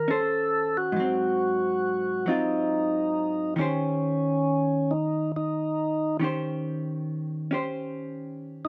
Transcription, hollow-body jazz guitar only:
0.00 0.95 D#3 soft
0.08 0.94 C#4 soft
0.08 0.96 C5 medium
0.92 3.56 G#2 soft
0.96 2.25 F#3 soft
0.96 2.26 C4 soft
2.26 3.57 F#3 soft
2.26 3.58 C4 soft
2.26 3.59 F4 soft
3.56 6.18 D#3 soft
3.56 6.20 C#4 soft
3.56 6.21 G4 medium
3.61 6.22 C5 medium
6.20 8.68 D#3 soft
6.20 7.50 C#4 soft
6.20 7.51 G4 soft
6.24 7.53 C5 medium
7.51 8.68 C#4 soft
7.51 8.68 G4 soft
7.51 8.68 C5 soft

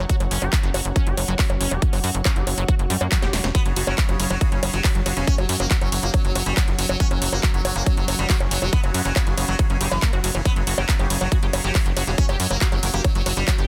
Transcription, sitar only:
3.55 3.62 B3 loud
3.66 3.72 C#3 medium
3.76 3.83 C#3 medium
3.87 3.94 F#3 loud
3.98 4.05 C#3 medium
4.09 4.15 C#3 medium
4.20 4.26 C#3 medium
4.30 4.37 F#3 medium
4.41 4.48 C#3 medium
4.52 4.59 C#3 medium
4.63 4.69 C#3 medium
4.74 4.80 F#3 medium
4.84 4.91 C#3 medium
5.06 5.13 C#3 medium
5.17 5.23 C#3 medium
5.28 5.34 C#4 loud
5.38 5.45 F#3 medium
5.49 5.56 F#3 medium
5.60 5.67 A#3 medium
5.71 5.77 F#3 medium
5.81 5.88 F#3 medium
5.92 5.99 F#3 medium
6.03 6.10 A#3 medium
6.14 6.21 F#3 medium
6.25 6.31 F#3 medium
6.35 6.42 F#3 medium
6.46 6.53 G3 medium
6.57 6.64 F#3 medium
6.79 6.85 F#3 medium
6.89 6.96 F#3 medium
7.00 7.07 C#4 loud
7.11 7.18 F#3 medium
7.22 7.28 F#3 medium
7.33 7.39 A#3 loud
7.43 7.50 F#3 medium
7.54 7.61 F#3 medium
7.65 7.72 F#3 medium
7.76 7.82 A#3 medium
7.87 7.93 F#3 medium
7.97 8.04 F#3 medium
8.08 8.15 F#3 medium
8.19 8.26 G3 medium
8.51 8.58 F#3 medium
8.62 8.69 F#3 medium
8.73 8.80 B3 loud
8.84 8.90 C#3 medium
8.94 9.01 C#3 medium
9.05 9.12 F#3 medium
9.16 9.23 C#3 medium
9.27 9.33 C#3 medium
9.38 9.44 C#3 medium
9.48 9.55 F#3 loud
9.59 9.66 C#3 medium
9.70 9.77 C#3 medium
9.81 9.87 C#3 medium
9.92 9.98 E3 medium
10.24 10.31 C#3 medium
10.35 10.41 C#3 medium
10.46 10.52 B3 loud
10.56 10.63 C#3 medium
10.67 10.74 C#3 medium
10.78 10.85 F#3 medium
10.89 10.95 C#3 medium
11.00 11.06 C#3 medium
11.10 11.17 C#3 medium
11.21 11.28 F#3 loud
11.32 11.39 C#3 medium
11.43 11.49 C#3 medium
11.54 11.60 C#3 medium
11.64 11.71 F#3 medium
11.75 11.82 C#3 medium
11.97 12.03 C#3 medium
12.07 12.14 C#3 medium
12.18 12.25 C#4 loud
12.29 12.36 F#3 medium
12.40 12.46 F#3 medium
12.51 12.57 A#3 loud
12.61 12.68 F#3 medium
12.72 12.79 F#3 medium
12.83 12.90 F#3 medium
12.94 13.00 A#3 loud
13.05 13.11 F#3 medium
13.15 13.22 F#3 medium
13.26 13.33 F#3 medium
13.37 13.44 G3 medium
13.48 13.54 F#3 medium

